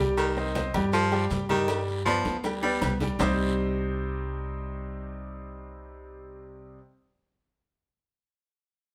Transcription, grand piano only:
0, 0, Header, 1, 2, 480
1, 0, Start_track
1, 0, Key_signature, -3, "minor"
1, 0, Tempo, 377834
1, 225, Time_signature, 4, 2, 24, 8
1, 11359, End_track
2, 0, Start_track
2, 0, Title_t, "Grand piano"
2, 0, Program_c, 0, 0
2, 0, Note_on_c, 0, 55, 90
2, 0, Note_on_c, 0, 67, 95
2, 0, Note_on_c, 0, 79, 85
2, 380, Note_off_c, 0, 55, 0
2, 381, Note_off_c, 0, 67, 0
2, 385, Note_off_c, 0, 79, 0
2, 468, Note_on_c, 0, 60, 76
2, 472, Note_on_c, 0, 72, 78
2, 473, Note_on_c, 0, 75, 75
2, 663, Note_off_c, 0, 60, 0
2, 666, Note_off_c, 0, 72, 0
2, 666, Note_off_c, 0, 75, 0
2, 708, Note_on_c, 0, 60, 81
2, 711, Note_on_c, 0, 72, 80
2, 714, Note_on_c, 0, 75, 83
2, 903, Note_off_c, 0, 60, 0
2, 905, Note_off_c, 0, 72, 0
2, 907, Note_off_c, 0, 75, 0
2, 944, Note_on_c, 0, 55, 93
2, 948, Note_on_c, 0, 67, 95
2, 954, Note_on_c, 0, 79, 91
2, 1337, Note_off_c, 0, 55, 0
2, 1340, Note_off_c, 0, 67, 0
2, 1343, Note_off_c, 0, 79, 0
2, 1418, Note_on_c, 0, 55, 90
2, 1426, Note_on_c, 0, 67, 100
2, 1427, Note_on_c, 0, 79, 97
2, 1814, Note_off_c, 0, 55, 0
2, 1818, Note_off_c, 0, 67, 0
2, 1819, Note_off_c, 0, 79, 0
2, 1900, Note_on_c, 0, 55, 91
2, 1903, Note_on_c, 0, 67, 92
2, 1909, Note_on_c, 0, 79, 90
2, 2098, Note_off_c, 0, 55, 0
2, 2099, Note_off_c, 0, 67, 0
2, 2103, Note_off_c, 0, 79, 0
2, 2139, Note_on_c, 0, 55, 86
2, 2143, Note_on_c, 0, 67, 81
2, 2146, Note_on_c, 0, 79, 86
2, 2534, Note_off_c, 0, 55, 0
2, 2536, Note_off_c, 0, 67, 0
2, 2538, Note_off_c, 0, 79, 0
2, 2622, Note_on_c, 0, 59, 78
2, 2627, Note_on_c, 0, 71, 75
2, 2628, Note_on_c, 0, 74, 79
2, 3015, Note_off_c, 0, 59, 0
2, 3019, Note_off_c, 0, 71, 0
2, 3019, Note_off_c, 0, 74, 0
2, 3104, Note_on_c, 0, 55, 90
2, 3108, Note_on_c, 0, 67, 84
2, 3110, Note_on_c, 0, 79, 90
2, 3300, Note_off_c, 0, 55, 0
2, 3302, Note_off_c, 0, 67, 0
2, 3304, Note_off_c, 0, 79, 0
2, 3345, Note_on_c, 0, 59, 80
2, 3349, Note_on_c, 0, 71, 83
2, 3350, Note_on_c, 0, 74, 85
2, 3737, Note_off_c, 0, 59, 0
2, 3739, Note_off_c, 0, 71, 0
2, 3740, Note_off_c, 0, 74, 0
2, 3829, Note_on_c, 0, 55, 89
2, 3833, Note_on_c, 0, 67, 90
2, 3837, Note_on_c, 0, 79, 88
2, 4022, Note_off_c, 0, 55, 0
2, 4025, Note_off_c, 0, 67, 0
2, 4027, Note_off_c, 0, 79, 0
2, 4059, Note_on_c, 0, 48, 89
2, 4062, Note_on_c, 0, 55, 90
2, 4065, Note_on_c, 0, 60, 88
2, 4068, Note_on_c, 0, 63, 89
2, 4069, Note_on_c, 0, 67, 81
2, 4073, Note_on_c, 0, 72, 102
2, 8605, Note_off_c, 0, 48, 0
2, 8608, Note_off_c, 0, 55, 0
2, 8611, Note_off_c, 0, 60, 0
2, 8614, Note_off_c, 0, 63, 0
2, 8615, Note_off_c, 0, 67, 0
2, 8619, Note_off_c, 0, 72, 0
2, 11359, End_track
0, 0, End_of_file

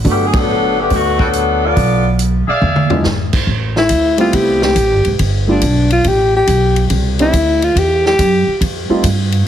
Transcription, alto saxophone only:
0, 0, Header, 1, 2, 480
1, 0, Start_track
1, 0, Key_signature, 1, "major"
1, 0, Tempo, 428571
1, 44, Time_signature, 4, 2, 24, 8
1, 10613, End_track
2, 0, Start_track
2, 0, Title_t, "Alto saxophone"
2, 0, Program_c, 0, 65
2, 4235, Note_on_c, 0, 64, 90
2, 4667, Note_off_c, 0, 64, 0
2, 4710, Note_on_c, 0, 65, 82
2, 4870, Note_on_c, 0, 67, 73
2, 4887, Note_off_c, 0, 65, 0
2, 5179, Note_off_c, 0, 67, 0
2, 5199, Note_on_c, 0, 67, 87
2, 5776, Note_off_c, 0, 67, 0
2, 6169, Note_on_c, 0, 62, 67
2, 6594, Note_off_c, 0, 62, 0
2, 6634, Note_on_c, 0, 65, 80
2, 6809, Note_on_c, 0, 67, 80
2, 6826, Note_off_c, 0, 65, 0
2, 7107, Note_off_c, 0, 67, 0
2, 7129, Note_on_c, 0, 67, 84
2, 7701, Note_off_c, 0, 67, 0
2, 8082, Note_on_c, 0, 64, 88
2, 8553, Note_on_c, 0, 65, 86
2, 8569, Note_off_c, 0, 64, 0
2, 8722, Note_on_c, 0, 67, 74
2, 8738, Note_off_c, 0, 65, 0
2, 9024, Note_off_c, 0, 67, 0
2, 9040, Note_on_c, 0, 67, 92
2, 9616, Note_off_c, 0, 67, 0
2, 10613, End_track
0, 0, End_of_file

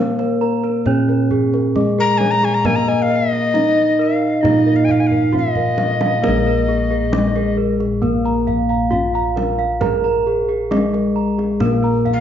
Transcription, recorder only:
0, 0, Header, 1, 2, 480
1, 0, Start_track
1, 0, Tempo, 895522
1, 1423, Time_signature, 4, 2, 24, 8
1, 6541, End_track
2, 0, Start_track
2, 0, Title_t, "Recorder"
2, 0, Program_c, 0, 74
2, 1072, Note_on_c, 0, 82, 107
2, 1168, Note_on_c, 0, 80, 106
2, 1176, Note_off_c, 0, 82, 0
2, 1239, Note_on_c, 0, 82, 123
2, 1247, Note_off_c, 0, 80, 0
2, 1311, Note_on_c, 0, 80, 98
2, 1320, Note_off_c, 0, 82, 0
2, 1363, Note_on_c, 0, 82, 102
2, 1371, Note_off_c, 0, 80, 0
2, 1426, Note_on_c, 0, 80, 98
2, 1434, Note_off_c, 0, 82, 0
2, 1478, Note_on_c, 0, 82, 94
2, 1486, Note_off_c, 0, 80, 0
2, 1547, Note_on_c, 0, 80, 84
2, 1555, Note_off_c, 0, 82, 0
2, 1619, Note_on_c, 0, 77, 98
2, 1627, Note_off_c, 0, 80, 0
2, 1693, Note_on_c, 0, 75, 115
2, 1701, Note_off_c, 0, 77, 0
2, 2152, Note_on_c, 0, 77, 79
2, 2160, Note_off_c, 0, 75, 0
2, 2364, Note_on_c, 0, 75, 80
2, 2372, Note_off_c, 0, 77, 0
2, 2551, Note_on_c, 0, 77, 60
2, 2559, Note_off_c, 0, 75, 0
2, 2598, Note_on_c, 0, 80, 80
2, 2606, Note_off_c, 0, 77, 0
2, 2633, Note_on_c, 0, 77, 52
2, 2641, Note_off_c, 0, 80, 0
2, 2680, Note_on_c, 0, 80, 52
2, 2689, Note_off_c, 0, 77, 0
2, 2717, Note_on_c, 0, 77, 60
2, 2725, Note_off_c, 0, 80, 0
2, 2876, Note_off_c, 0, 77, 0
2, 2881, Note_on_c, 0, 75, 82
2, 4062, Note_off_c, 0, 75, 0
2, 6503, Note_on_c, 0, 77, 108
2, 6541, Note_off_c, 0, 77, 0
2, 6541, End_track
0, 0, End_of_file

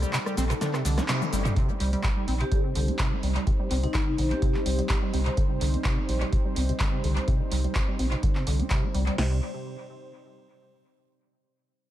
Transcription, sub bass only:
0, 0, Header, 1, 2, 480
1, 0, Start_track
1, 0, Tempo, 476190
1, 1577, Time_signature, 4, 2, 24, 8
1, 11998, End_track
2, 0, Start_track
2, 0, Title_t, "Sub bass"
2, 0, Program_c, 0, 38
2, 377, Note_on_c, 0, 34, 104
2, 530, Note_off_c, 0, 34, 0
2, 857, Note_on_c, 0, 36, 88
2, 1010, Note_off_c, 0, 36, 0
2, 1337, Note_on_c, 0, 31, 112
2, 1490, Note_off_c, 0, 31, 0
2, 1817, Note_on_c, 0, 36, 100
2, 1970, Note_off_c, 0, 36, 0
2, 2295, Note_on_c, 0, 34, 97
2, 2449, Note_off_c, 0, 34, 0
2, 2776, Note_on_c, 0, 36, 83
2, 2930, Note_off_c, 0, 36, 0
2, 3256, Note_on_c, 0, 36, 85
2, 3409, Note_off_c, 0, 36, 0
2, 3736, Note_on_c, 0, 36, 95
2, 3889, Note_off_c, 0, 36, 0
2, 4216, Note_on_c, 0, 34, 102
2, 4369, Note_off_c, 0, 34, 0
2, 4696, Note_on_c, 0, 36, 89
2, 4849, Note_off_c, 0, 36, 0
2, 5176, Note_on_c, 0, 36, 85
2, 5329, Note_off_c, 0, 36, 0
2, 5656, Note_on_c, 0, 36, 96
2, 5809, Note_off_c, 0, 36, 0
2, 6136, Note_on_c, 0, 34, 98
2, 6289, Note_off_c, 0, 34, 0
2, 6616, Note_on_c, 0, 36, 93
2, 6769, Note_off_c, 0, 36, 0
2, 7095, Note_on_c, 0, 36, 88
2, 7249, Note_off_c, 0, 36, 0
2, 7575, Note_on_c, 0, 36, 97
2, 7729, Note_off_c, 0, 36, 0
2, 8056, Note_on_c, 0, 34, 96
2, 8209, Note_off_c, 0, 34, 0
2, 8537, Note_on_c, 0, 36, 93
2, 8690, Note_off_c, 0, 36, 0
2, 9017, Note_on_c, 0, 36, 100
2, 9170, Note_off_c, 0, 36, 0
2, 9257, Note_on_c, 0, 36, 95
2, 9480, Note_off_c, 0, 36, 0
2, 11998, End_track
0, 0, End_of_file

